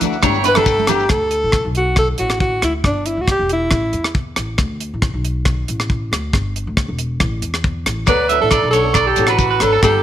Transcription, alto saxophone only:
0.48 0.58 B4 loud
0.57 0.91 A4 loud
0.89 1.10 G4 medium
1.11 1.72 A4 medium
1.77 1.97 F#4 medium
1.99 2.08 A4 medium
2.19 2.39 F#4 medium
2.40 2.61 F#4 medium
2.64 2.74 E4 medium
2.86 3.08 D4 medium
3.06 3.23 E4 medium
3.21 3.30 F#4 medium
3.31 3.50 G4 medium
3.53 4.13 E4 medium
8.09 8.40 B4 medium
8.41 8.70 A4 medium
8.71 9.08 A4 medium
9.06 9.30 G4 medium
9.28 9.64 F#4 medium
9.62 9.83 A4 medium
9.84 10.03 A4 medium

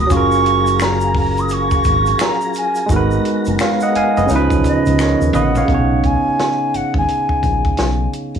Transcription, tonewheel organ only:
0.00 4.25 A#5 medium
0.10 2.86 F#3 medium
0.10 2.86 F4 medium
0.10 2.87 G#4 medium
2.88 4.27 G#3 medium
2.88 4.27 B3 medium
2.88 4.27 F#4 medium
4.29 5.67 C#3 medium
4.29 5.67 F3 medium
4.29 5.67 B3 medium
4.29 5.67 D#4 medium

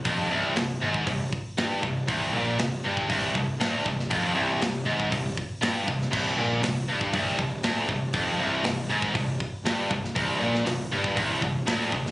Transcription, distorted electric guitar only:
0.05 0.30 F2 loud
0.31 0.55 C2 loud
0.57 0.76 C2 medium
0.82 1.06 G#2 loud
1.07 1.27 C2 medium
1.58 1.82 G2 loud
1.82 2.03 C2 medium
2.08 2.32 C2 loud
2.33 2.58 A#2 loud
2.59 2.79 C2 medium
2.84 3.09 G2 loud
3.10 3.34 C2 loud
3.35 3.55 C2 medium
3.60 3.85 D2 medium
3.86 4.06 C2 medium
4.10 4.34 F2 loud
4.35 4.60 C2 loud
4.62 4.82 C2 medium
4.86 5.11 G#2 loud
5.12 5.32 C2 medium
5.62 5.86 G2 loud
5.87 6.08 C2 medium
6.12 6.37 C2 loud
6.38 6.62 A#2 loud
6.63 6.83 C2 medium
6.89 7.13 G2 loud
7.14 7.37 C2 medium
7.38 7.59 C2 medium
7.64 7.88 D2 medium
7.89 8.09 C2 medium
8.14 8.39 F2 loud
8.39 8.63 C2 loud
8.64 8.85 C2 medium
8.90 9.14 G#2 loud
9.15 9.35 C2 medium
9.66 9.90 G2 loud
9.91 10.11 C2 medium
10.15 10.40 C2 loud
10.40 10.65 A#2 loud
10.66 10.86 C2 medium
10.92 11.16 G2 loud
11.16 11.40 C2 loud
11.42 11.62 C2 medium
11.67 11.92 D2 medium
11.92 12.11 C2 medium

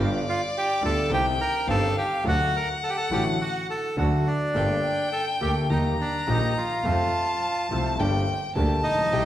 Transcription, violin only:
0.00 1.13 D5 loud
1.11 1.69 G5 loud
1.68 2.28 F5 loud
2.27 4.27 F#5 loud
4.55 5.72 G5 loud
5.70 6.87 A#5 loud
6.86 8.01 A5 loud
7.99 8.56 G5 loud
8.56 9.15 A5 loud
9.13 9.25 G5 loud

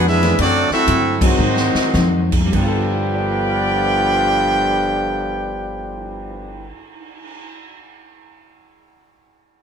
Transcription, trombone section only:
0.06 0.38 G#3 medium
0.06 0.38 B3 medium
0.06 0.38 E4 medium
0.38 0.68 F#3 medium
0.38 0.69 A3 medium
0.38 0.69 D4 medium
0.71 1.18 A3 medium
0.71 1.18 C4 medium
0.71 1.18 E4 medium
1.22 2.33 D#3 medium
1.22 2.33 F#3 medium
1.22 2.33 C4 medium
2.52 6.70 G2 loud
2.52 6.71 D3 loud
2.52 6.71 F3 loud
2.52 6.71 B3 medium

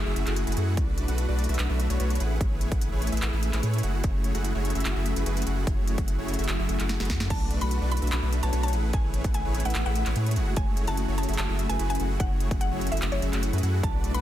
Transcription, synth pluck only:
7.30 7.56 A5 loud
7.61 7.86 B5 loud
7.92 8.08 B5 medium
8.12 8.37 B5 loud
8.43 8.60 A5 medium
8.63 8.88 A5 medium
8.94 9.27 G#5 loud
9.35 9.60 G#5 medium
9.65 9.82 F#5 medium
9.86 10.49 F#5 loud
10.57 10.82 G#5 loud
10.88 11.13 A5 loud
11.18 11.35 A5 medium
11.38 11.64 A5 loud
11.69 11.86 G#5 loud
11.90 12.15 G#5 loud
12.20 12.54 F#5 loud
12.61 12.86 F#5 medium
12.92 13.08 E5 medium
13.12 13.75 C#5 loud
13.84 14.09 A5 loud
14.14 14.21 B5 loud

